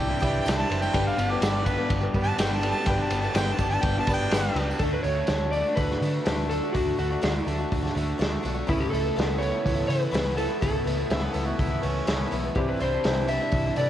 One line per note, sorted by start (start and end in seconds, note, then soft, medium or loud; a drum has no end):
0.00 0.14 C2 medium
0.00 0.22 C3 medium
0.00 0.69 E3 medium
0.00 0.10 G3 soft
0.00 0.21 G3 medium
0.00 0.45 D4 medium
0.00 0.56 G5 loud
0.09 0.21 G3 soft
0.09 0.21 D4 soft
0.09 0.22 E4 soft
0.20 0.39 C2 medium
0.20 0.45 E3 medium
0.20 0.46 G3 medium
0.20 0.65 D4 medium
0.20 0.46 D4 medium
0.20 0.65 E4 medium
0.20 0.47 E4 medium
0.20 0.65 G4 loud
0.20 kick medium
0.20 ride medium
0.20 tambourine medium
0.34 tambourine soft
0.45 0.63 C2 medium
0.45 0.70 C3 medium
0.45 0.68 E3 medium
0.45 0.69 G3 medium
0.45 0.70 D4 medium
0.45 0.71 E4 medium
0.45 snare loud
0.45 ride medium
0.45 tambourine medium
0.58 0.81 A5 medium
0.69 0.87 F#1 medium
0.69 0.82 E3 medium
0.69 0.82 G3 medium
0.69 0.92 D4 medium
0.69 0.81 D4 medium
0.69 0.92 E4 medium
0.69 0.79 E4 medium
0.69 0.92 C5 medium
0.69 ride medium
0.69 tambourine soft
0.81 0.93 G3 soft
0.81 0.93 D4 soft
0.81 0.94 E4 soft
0.81 1.06 G5 loud
0.81 tambourine medium
0.93 1.11 G1 medium
0.93 1.18 G2 medium
0.93 1.18 D3 medium
0.93 1.16 G3 medium
0.93 1.17 B3 medium
0.93 1.79 D4 medium
0.93 1.18 D4 medium
0.93 1.79 G4 medium
0.93 1.18 G4 medium
0.93 1.79 B4 medium
0.93 kick loud
0.93 ride medium
1.07 1.32 F5 medium
1.07 tambourine soft
1.17 1.35 G1 medium
1.17 1.30 G3 medium
1.17 1.31 B3 medium
1.17 1.30 D4 medium
1.17 1.29 G4 medium
1.17 ride medium
1.17 tambourine medium
1.30 1.42 G3 soft
1.30 1.42 B3 medium
1.30 1.42 D4 medium
1.30 1.42 G4 medium
1.30 1.68 D5 loud
1.42 1.75 G1 medium
1.42 1.67 G2 medium
1.42 1.67 D3 medium
1.42 1.65 G3 medium
1.42 1.66 B3 medium
1.42 1.67 D4 medium
1.42 1.67 G4 medium
1.42 snare loud
1.42 ride medium
1.42 tambourine loud
1.56 tambourine soft
1.66 1.79 G3 medium
1.66 1.78 B3 medium
1.66 1.77 D4 medium
1.66 1.76 G4 medium
1.66 1.90 B4 medium
1.66 kick medium
1.66 ride medium
1.66 tambourine medium
1.77 2.02 G3 medium
1.77 2.02 B3 medium
1.77 2.00 D4 medium
1.77 2.00 G4 medium
1.89 2.07 G1 loud
1.89 2.61 G3 medium
1.89 kick loud
1.89 ride loud
1.89 tambourine soft
2.01 2.12 G3 soft
2.01 2.13 B3 soft
2.01 2.15 D4 medium
2.01 2.14 G4 medium
2.14 2.31 G2 loud
2.14 2.38 G3 medium
2.14 2.38 B3 medium
2.14 2.58 D4 medium
2.14 2.38 D4 medium
2.14 2.58 G4 medium
2.14 2.38 G4 medium
2.14 2.58 B4 medium
2.14 kick medium
2.14 ride medium
2.14 tambourine medium
2.23 2.38 A5 loud
2.23 tambourine soft
2.38 2.72 G1 medium
2.38 2.63 G2 medium
2.38 2.63 D3 medium
2.38 2.61 G3 medium
2.38 2.62 B3 medium
2.38 2.63 D4 medium
2.38 2.63 G4 medium
2.38 2.57 G5 medium
2.38 snare loud
2.38 ride loud
2.38 tambourine loud
2.51 tambourine soft
2.56 2.70 A5 medium
2.62 2.75 G3 medium
2.62 2.75 B3 medium
2.62 2.84 D4 medium
2.62 2.75 D4 medium
2.62 2.84 G4 medium
2.62 2.73 G4 medium
2.62 2.85 A4 medium
2.62 ride medium
2.62 tambourine soft
2.71 2.87 G4 medium
2.71 2.90 A5 loud
2.76 2.86 G3 soft
2.76 2.87 B3 soft
2.76 2.87 D4 soft
2.86 3.03 G1 loud
2.86 3.11 G2 medium
2.86 3.12 D3 medium
2.86 3.09 G3 medium
2.86 3.10 B3 medium
2.86 3.73 D4 medium
2.86 3.11 D4 medium
2.86 3.73 G4 medium
2.86 3.12 G4 medium
2.86 3.73 B4 medium
2.86 3.05 G5 medium
2.86 kick loud
2.86 ride medium
2.86 tambourine soft
3.04 3.19 A5 medium
3.10 3.28 G1 medium
3.10 3.23 G3 medium
3.10 3.23 B3 medium
3.10 3.22 D4 medium
3.10 3.21 G4 medium
3.10 ride medium
3.10 tambourine medium
3.20 3.34 B3 soft
3.20 3.34 D4 medium
3.20 3.35 G4 medium
3.20 3.35 A5 medium
3.20 tambourine soft
3.25 3.33 G3 soft
3.34 3.51 G1 medium
3.34 3.59 G2 medium
3.34 3.59 D3 medium
3.34 3.57 G3 medium
3.34 3.59 B3 medium
3.34 3.59 D4 medium
3.34 3.60 G4 medium
3.34 3.54 G5 loud
3.34 snare loud
3.34 ride medium
3.34 tambourine medium
3.52 3.68 A5 medium
3.58 3.76 G1 medium
3.58 3.71 G3 medium
3.58 3.72 B3 medium
3.58 3.71 D4 medium
3.58 3.70 G4 medium
3.58 kick medium
3.58 ride medium
3.58 tambourine medium
3.69 3.97 B3 medium
3.69 3.95 D4 medium
3.69 3.95 G4 medium
3.69 3.85 A5 loud
3.74 3.97 G3 soft
3.83 4.00 G1 medium
3.83 4.55 G3 medium
3.83 3.99 G5 loud
3.83 kick loud
3.83 ride medium
3.96 4.07 G3 soft
3.96 4.08 B3 medium
3.96 4.09 D4 medium
3.96 4.08 G4 medium
3.96 4.13 A5 loud
3.96 tambourine soft
4.07 4.24 G1 medium
4.07 4.32 G3 medium
4.07 4.32 B3 medium
4.07 4.51 D4 medium
4.07 4.33 D4 medium
4.07 4.51 G4 medium
4.07 4.33 G4 medium
4.07 4.51 B4 medium
4.07 kick medium
4.07 ride medium
4.07 tambourine medium
4.13 4.62 G5 loud
4.31 4.48 G1 medium
4.31 4.57 G2 medium
4.31 4.57 D3 medium
4.31 4.56 G3 medium
4.31 4.57 B3 medium
4.31 4.57 D4 medium
4.31 4.58 G4 loud
4.31 snare loud
4.31 ride medium
4.31 tambourine loud
4.55 4.72 C#2 medium
4.55 4.69 G3 medium
4.55 4.70 B3 medium
4.55 4.77 D4 medium
4.55 4.78 G4 medium
4.55 4.78 B4 medium
4.55 ride medium
4.59 4.69 D4 medium
4.59 4.69 G4 medium
4.59 tambourine soft
4.70 4.80 G3 soft
4.70 4.82 B3 soft
4.70 4.81 D4 soft
4.70 4.81 G4 medium
4.70 tambourine medium
4.79 4.97 D2 medium
4.79 5.04 D3 medium
4.79 5.05 A3 medium
4.79 5.06 D4 medium
4.79 4.93 A4 medium
4.79 kick medium
4.79 open hi-hat medium
4.83 5.06 F#4 medium
4.93 5.03 B4 medium
5.03 5.21 D2 medium
5.03 5.18 D3 medium
5.03 5.18 A3 medium
5.03 5.51 C#5 medium
5.03 open hi-hat soft
5.07 5.17 D4 medium
5.07 5.16 F#4 medium
5.17 5.28 A3 soft
5.17 5.29 D4 soft
5.17 5.29 F#4 soft
5.27 5.62 D2 medium
5.27 5.53 D3 medium
5.27 5.54 A3 medium
5.27 5.54 D4 medium
5.27 snare loud
5.27 open hi-hat medium
5.31 5.54 F#4 medium
5.51 5.66 D3 soft
5.51 5.66 A3 medium
5.51 5.77 D5 medium
5.51 open hi-hat soft
5.56 5.67 D4 medium
5.56 5.66 F#4 medium
5.67 5.92 A3 soft
5.67 5.91 D4 soft
5.67 5.89 F#4 soft
5.76 5.94 D2 medium
5.76 6.49 D3 medium
5.76 6.49 B4 medium
5.76 kick loud
5.76 open hi-hat medium
5.91 6.03 A3 soft
5.91 6.03 D4 soft
5.91 6.02 F#4 medium
5.91 snare soft
6.02 6.18 D3 medium
6.02 6.26 D3 soft
6.02 6.26 A3 medium
6.02 6.27 D4 medium
6.02 6.27 F#4 medium
6.02 open hi-hat soft
6.26 6.59 D2 medium
6.26 6.49 D3 medium
6.26 6.50 A3 medium
6.26 6.51 D4 medium
6.26 6.51 F#4 medium
6.26 snare loud
6.26 open hi-hat medium
6.50 6.63 D3 medium
6.50 6.63 A3 medium
6.50 6.64 D4 medium
6.50 6.62 F#4 medium
6.50 6.75 A4 medium
6.50 open hi-hat soft
6.63 6.74 A3 soft
6.63 6.75 D4 soft
6.63 6.75 F#4 soft
6.73 6.91 D2 medium
6.73 6.96 D3 medium
6.73 6.97 A3 medium
6.73 6.98 D4 medium
6.73 6.97 F#4 medium
6.73 6.99 F#4 medium
6.73 kick loud
6.73 open hi-hat medium
6.97 7.15 D2 medium
6.97 7.10 D3 medium
6.97 7.11 A3 medium
6.97 7.11 D4 medium
6.97 7.44 F#4 medium
6.97 7.09 F#4 medium
6.97 open hi-hat soft
7.10 7.20 A3 soft
7.10 7.21 D4 soft
7.10 7.21 F#4 soft
7.21 7.39 D2 medium
7.21 7.44 D3 medium
7.21 7.46 A3 medium
7.21 7.46 D4 medium
7.21 7.47 F#4 medium
7.21 snare medium
7.21 open hi-hat medium
7.45 7.63 D2 medium
7.45 7.58 D3 medium
7.45 7.59 A3 medium
7.45 7.57 D4 medium
7.45 7.57 F#4 medium
7.45 open hi-hat soft
7.58 7.84 A3 soft
7.58 7.83 D4 medium
7.58 7.81 F#4 medium
7.71 7.88 D2 medium
7.71 8.43 D3 medium
7.71 kick loud
7.71 open hi-hat medium
7.83 7.94 A3 soft
7.83 7.95 D4 soft
7.83 7.95 F#4 medium
7.83 snare soft
7.94 8.12 D2 medium
7.94 8.17 D3 medium
7.94 8.18 A3 medium
7.94 8.18 D4 medium
7.94 8.18 F#4 medium
7.94 open hi-hat soft
8.18 8.36 D2 medium
8.18 8.42 D3 medium
8.18 8.42 A3 medium
8.18 8.44 D4 medium
8.18 8.44 F#4 medium
8.18 open hi-hat medium
8.22 snare loud
8.43 8.61 B1 medium
8.43 8.56 D3 medium
8.43 8.56 A3 medium
8.43 8.54 D4 medium
8.43 8.53 F#4 medium
8.43 open hi-hat soft
8.54 8.67 A3 soft
8.54 8.68 D4 soft
8.54 8.67 F#4 soft
8.67 8.85 C#2 medium
8.67 8.92 C#3 medium
8.67 8.90 E3 medium
8.67 8.92 A3 medium
8.67 8.92 B3 medium
8.67 8.93 E4 medium
8.67 8.82 E4 medium
8.67 kick loud
8.67 open hi-hat medium
8.80 8.90 G4 medium
8.90 9.09 C#2 medium
8.90 9.04 E3 medium
8.90 9.05 A3 medium
8.90 9.04 B3 medium
8.90 9.42 A4 medium
8.94 9.02 E4 medium
8.94 open hi-hat soft
9.04 9.15 A3 soft
9.04 9.16 B3 soft
9.04 9.17 E4 soft
9.16 9.50 C#2 medium
9.16 9.41 C#3 medium
9.16 9.38 E3 medium
9.16 9.39 A3 medium
9.16 9.40 B3 medium
9.16 9.40 E4 medium
9.16 snare medium
9.16 open hi-hat medium
9.38 9.53 E3 medium
9.38 9.53 A3 medium
9.38 9.51 B3 medium
9.38 9.50 E4 medium
9.38 9.90 C#5 loud
9.42 open hi-hat soft
9.51 9.76 A3 soft
9.51 9.75 B3 soft
9.51 9.74 E4 medium
9.65 9.82 C#2 medium
9.65 10.38 E3 medium
9.65 kick medium
9.65 open hi-hat medium
9.75 9.87 A3 soft
9.75 9.88 B3 soft
9.75 9.89 E4 soft
9.87 10.06 C#3 medium
9.87 10.10 E3 medium
9.87 10.11 A3 medium
9.87 10.12 B3 medium
9.87 10.12 E4 medium
9.87 10.37 B4 loud
9.87 open hi-hat soft
10.11 10.46 C#2 medium
10.11 10.37 C#3 medium
10.11 10.36 E3 medium
10.11 10.36 A3 medium
10.11 10.38 B3 medium
10.11 10.38 E4 medium
10.11 open hi-hat medium
10.15 snare loud
10.37 10.50 E3 medium
10.37 10.49 A3 medium
10.37 10.47 B3 medium
10.37 10.46 E4 medium
10.37 10.61 A4 medium
10.37 open hi-hat soft
10.48 10.62 A3 soft
10.48 10.62 B3 soft
10.48 10.61 E4 soft
10.61 10.79 C#2 medium
10.61 10.86 C#3 medium
10.61 10.83 E3 medium
10.61 10.85 A3 medium
10.61 10.86 B3 medium
10.61 10.86 E4 medium
10.61 11.07 A4 medium
10.61 kick loud
10.61 open hi-hat medium
10.84 11.02 C#2 medium
10.84 10.98 E3 medium
10.84 10.98 A3 medium
10.84 10.97 B3 medium
10.84 10.96 E4 medium
10.84 open hi-hat soft
10.97 11.10 A3 soft
10.97 11.11 B3 soft
10.97 11.10 E4 soft
11.10 11.27 C#2 medium
11.10 11.35 C#3 medium
11.10 11.32 E3 medium
11.10 11.33 A3 medium
11.10 11.34 B3 medium
11.10 11.35 E4 medium
11.10 11.25 E5 medium
11.10 snare loud
11.10 open hi-hat medium
11.23 11.35 B4 medium
11.33 11.51 C#2 medium
11.33 11.46 E3 medium
11.33 11.47 A3 medium
11.33 11.45 B3 medium
11.33 11.44 E4 medium
11.33 11.47 A4 medium
11.33 open hi-hat soft
11.45 11.72 A3 medium
11.45 11.70 B3 medium
11.45 11.69 E4 medium
11.45 11.61 F#4 medium
11.58 11.76 C#2 medium
11.58 12.31 E3 medium
11.58 11.85 E4 medium
11.58 kick loud
11.58 open hi-hat medium
11.70 11.82 A3 soft
11.70 11.83 B3 soft
11.70 11.83 E4 medium
11.82 12.00 C#2 medium
11.82 12.06 E3 medium
11.82 12.07 A3 medium
11.82 12.08 B3 medium
11.82 12.42 C#4 medium
11.82 12.08 E4 medium
11.82 open hi-hat soft
12.07 12.24 C#2 medium
12.07 12.32 C#3 medium
12.07 12.30 E3 medium
12.07 12.31 A3 medium
12.07 12.32 B3 medium
12.07 12.32 E4 medium
12.07 snare medium
12.07 open hi-hat medium
12.31 12.49 B1 medium
12.31 12.44 E3 medium
12.31 12.44 A3 medium
12.31 12.43 B3 medium
12.31 12.42 E4 medium
12.31 open hi-hat soft
12.43 12.56 A3 soft
12.43 12.56 B3 soft
12.43 12.56 E4 soft
12.55 12.73 C2 medium
12.55 12.80 C3 medium
12.55 12.79 E3 medium
12.55 12.79 G3 medium
12.55 12.80 D4 medium
12.55 13.42 D4 medium
12.55 13.42 E4 medium
12.55 12.81 E4 medium
12.55 12.69 G4 medium
12.55 13.42 C5 medium
12.55 kick loud
12.55 open hi-hat medium
12.68 12.81 B4 medium
12.80 12.97 C2 medium
12.80 12.92 E3 medium
12.80 12.92 G3 medium
12.80 12.93 D4 medium
12.80 12.92 E4 medium
12.80 13.31 C5 medium
12.80 open hi-hat soft
12.93 13.05 G3 soft
12.93 13.06 D4 soft
12.93 13.05 E4 soft
13.04 13.38 C2 medium
13.04 13.29 C3 medium
13.04 13.27 E3 medium
13.04 13.29 G3 medium
13.04 13.29 D4 medium
13.04 13.30 E4 medium
13.04 snare loud
13.04 open hi-hat medium
13.28 13.41 E3 medium
13.28 13.41 G3 medium
13.28 13.41 D4 medium
13.28 13.40 E4 medium
13.28 13.77 E5 loud
13.28 open hi-hat soft
13.41 13.66 G3 soft
13.41 13.65 D4 soft
13.41 13.64 E4 medium
13.52 13.69 C2 medium
13.52 13.90 E3 medium
13.52 kick loud
13.52 open hi-hat medium
13.65 13.78 G3 soft
13.65 13.78 D4 soft
13.65 13.77 E4 soft
13.76 13.90 C3 medium
13.76 13.90 E3 medium
13.76 13.90 G3 medium
13.76 13.90 D4 medium
13.76 13.90 E4 medium
13.76 13.90 A4 medium
13.76 13.90 D5 medium
13.76 open hi-hat soft
13.81 13.90 E4 medium